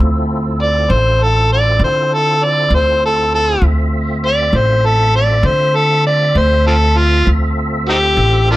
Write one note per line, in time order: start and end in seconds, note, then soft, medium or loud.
0.00 0.86 D2 medium
0.00 3.59 C4 medium
0.00 3.59 E4 medium
0.00 3.59 F4 medium
0.00 3.59 A4 medium
0.63 0.92 D5 medium
0.90 1.77 A1 medium
0.90 1.25 C5 medium
1.23 1.51 A4 medium
1.53 1.81 D5 medium
1.79 2.67 D3 medium
1.84 2.15 C5 medium
2.14 2.45 A4 medium
2.44 2.72 D5 medium
2.70 3.58 D2 medium
2.74 3.02 C5 medium
3.05 3.33 A4 medium
3.35 3.63 A4 medium
3.61 4.49 D2 medium
3.61 7.23 A3 medium
3.61 7.23 C4 medium
3.61 7.24 F4 medium
3.61 7.24 E5 medium
4.26 4.58 D5 loud
4.53 5.40 A1 medium
4.53 4.87 C5 medium
4.85 5.14 A4 medium
5.16 5.47 D5 medium
5.43 6.31 D3 medium
5.43 5.77 C5 medium
5.76 6.05 A4 medium
6.07 6.39 D5 medium
6.35 7.23 D2 medium
6.35 6.66 C5 medium
6.67 6.75 C4 medium
6.67 6.76 F4 medium
6.67 6.99 A4 medium
6.97 7.27 F4 medium
7.25 8.14 D2 medium
7.25 8.57 C4 medium
7.25 8.57 F4 medium
7.25 8.57 A4 medium
7.25 8.57 E5 medium
7.89 7.97 C4 medium
7.89 7.96 D#4 medium
7.89 8.48 G4 loud
8.17 8.57 A1 medium
8.51 8.57 A#3 medium
8.51 8.57 D4 medium
8.51 8.57 F4 medium